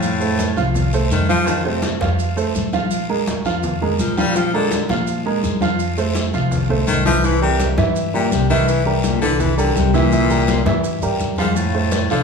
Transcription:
Already playing: F2 A2 F3 F4 F5
0.02 high conga, long guiro, maracas
0.21 A3 A4 C5, high conga, maracas
0.39 high conga, short guiro, maracas
0.57 C2 F3 F4 F5, high conga, short guiro, maracas
0.74 high conga, low conga, long guiro, maracas
0.93 A3 A4 C5, high conga, maracas
1.10 F2 D#3, high conga, short guiro, maracas
1.29 F3 F4 F5, high conga, short guiro, maracas
1.47 D#3 F3 F4 F5, high conga, long guiro, maracas
1.65 C3 A3 A4 C5, high conga
1.82 high conga, short guiro, maracas
2.01 F2 F3 F4 F5, high conga, short guiro, maracas
2.19 high conga, long guiro, maracas
2.37 A3 A4 C5, high conga, maracas
2.55 A#1, high conga, short guiro, maracas
2.73 F3 F4 F5, high conga, short guiro, maracas
2.91 high conga, long guiro, maracas
3.09 G#3 G#4 A#4, high conga
3.27 high conga, short guiro, maracas
3.45 F2 F3 F4 F5, high conga, short guiro, maracas
3.63 high conga, low conga, long guiro, maracas
3.82 G#3 G#4 A#4, high conga, low conga
3.99 A#1 F3, high conga, short guiro, maracas
4.17 F3 G3 F4 F5, high conga, short guiro, maracas
4.35 F3 F4 F5, high conga, long guiro, maracas
4.53 D3 G#3 G#4 A#4, high conga
4.71 high conga, short guiro, maracas
4.89 A#2 F3 F4 F5, high conga, short guiro, maracas
5.07 high conga, long guiro, maracas
5.25 G#3 G#4 A#4, high conga
5.43 F2, high conga, short guiro, maracas
5.61 F3 F4 F5, high conga, short guiro, maracas
5.79 high conga, long guiro, maracas
5.97 A3 A4 C5, high conga, maracas
6.15 high conga, short guiro, maracas
6.33 C2 F3 F4 F5, high conga, short guiro, maracas
6.51 high conga, low conga, long guiro, maracas
6.69 A3 A4 C5, high conga, low conga
6.87 C2 D#3, high conga, short guiro, maracas
7.05 E3 F3 E4 E5, high conga, short guiro, maracas
7.23 E3 E4 E5, high conga, long guiro, maracas
7.42 C3 G3 G4 A#4, high conga
7.60 high conga, short guiro, maracas
7.78 G2 E3 E4 E5, high conga, short guiro, maracas
7.96 high conga, long guiro, maracas
8.14 A#2 G3 G4 A#4, high conga
8.32 C2 C3, high conga, short guiro, maracas
8.50 D#3 E3 E4 E5, high conga, short guiro, maracas
8.68 E3, high conga, long guiro, maracas
8.86 G2 G3 G4 A#4, high conga
9.04 A#2, high conga, short guiro, maracas
9.22 C2 D3 E3 E4 E5, high conga, short guiro, maracas
9.40 E3, high conga, low conga, long guiro, maracas
9.57 D3 G3 G4 A#4, high conga, maracas
9.76 C2 C3, high conga, short guiro, maracas
9.93 A#2 E3 E4 E5, high conga, short guiro, maracas
10.12 E3 E4 E5, high conga, long guiro, maracas
10.30 G3 G4 A#4, high conga, maracas
10.48 high conga, short guiro, maracas
10.66 G2 E3 E4 E5, high conga, short guiro, maracas
10.84 high conga, long guiro, maracas
11.01 G2 G3 G4 A#4, high conga, maracas
11.20 F2, high conga, short guiro, maracas
11.38 G#2 F3 F4 F5, high conga, short guiro, maracas
11.56 A2, high conga, long guiro, maracas
11.74 A3 A4 C5, high conga
11.92 high conga, short guiro, maracas
12.09 C2 D3 F3 F4 F5, high conga, short guiro, maracas

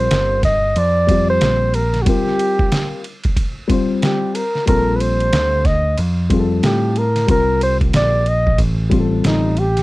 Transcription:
Already playing: G3 C4 F4 A#4 C5
0.11 G1, snare, hi-hat pedal, ride
0.43 D#5, kick, snare, ride
0.76 F2 D5, ride
1.07 G3 C4 F4 G4, kick, ride
1.30 C5
1.41 A#1, snare, hi-hat pedal, ride
1.74 A#4, ride
1.94 snare, ride
2.02 G3 C4 F#4, ride
2.07 F4 G4 A#4, kick
2.27 snare
2.39 ride
2.59 kick
2.72 snare, hi-hat pedal, ride
3.04 ride
3.24 kick, ride
3.37 kick, ride
3.68 G3 C4 F4 C5, kick, ride
4.02 G4, snare, hi-hat pedal, ride
4.35 A#4, ride
4.55 snare
4.66 A#1 G3 C4 F4 A4 A#4, kick, ride
4.96 B4
5.00 C5, ride
5.20 ride
5.33 D2, snare, hi-hat pedal, ride
5.65 D#5, kick, snare, ride
5.98 F2, ride
6.30 G3 C4 F4 G#4, kick, ride
6.39 A4
6.63 A2 G4, snare, hi-hat pedal, ride
6.96 A#4, ride
7.16 snare, ride
7.27 C2 G3 C4 F4 A#4, kick, ride
7.31 A#4
7.61 C5, ride
7.81 kick, ride
7.93 A#1 D5, snare, hi-hat pedal, ride
8.26 D#5, ride
8.47 kick
8.58 A1, kick, ride
8.90 G3 C4 F4 G4, kick, ride
9.00 A4
9.24 A1 D#4, snare, hi-hat pedal, ride
9.57 G4, ride
9.77 snare, ride

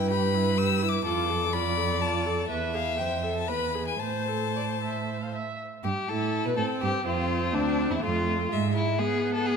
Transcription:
Already playing: G2 E4 B4 G5
0.11 G4 B5
0.34 E4
0.58 G4 E6
0.82 E4
0.89 D6
1.05 F2 F4 A4 D6
1.30 A4
1.53 F4 D5 B5
1.77 A4
2.01 F4 A5
2.26 A4
2.50 E2 B4 E5
2.74 G#4 F5
2.98 F2 C5 G5
3.23 A4
3.36 A5
3.48 E2 B4 B5
3.75 G#4
3.88 G#5
3.99 A2 C5 A5
4.28 A4
4.56 D5
4.83 E5
5.22 F5
5.34 E5
5.84 G2 G4
6.08 A2 E4 A4
6.45 B2 B4
6.56 A2 C4 A4
6.81 G2 G4
7.05 F2 C4 F4
7.54 D2 D4
7.90 E2 E4
8.02 F2 A3 F4
8.51 G#2 G#3 E5
8.75 E4
8.99 B3 G#4
9.34 A4
9.46 G#4

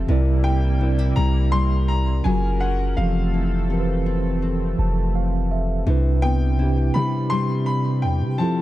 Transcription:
Already playing: C4 E4 A4
0.07 C2 C3 G3 A#3 C4 E4 A#4
0.12 D5
0.44 A#3 G5
0.79 C3 C4 D4 E4 A#4
0.84 D5
0.99 E4
1.16 C2 G3 A#5
1.52 G3 C6
1.88 A#5
2.24 F#1 F#3 C#4 F4 G#4 A#4 G#5
2.29 A#4
2.60 F#5
2.96 F1 E3 F3 A3 C4 G4 A4 F5
3.01 A4
3.34 E4
3.68 E3 F3 C4 G4 A4
3.73 A#4
3.80 B4
4.06 C4
4.42 C4
4.79 F1 A5
5.15 F5
5.51 E5
5.85 C2 C3 G3 C4 D4 E4
5.90 B4
6.22 B3 G5
6.57 C3 C4 D4 E4
6.62 G4
6.94 C3 G3 B5
7.30 G3 C6
7.66 B5
8.02 E2 G5
8.22 C3
8.38 C3 F3 C4 E4 G4 A4 A5
8.43 A4

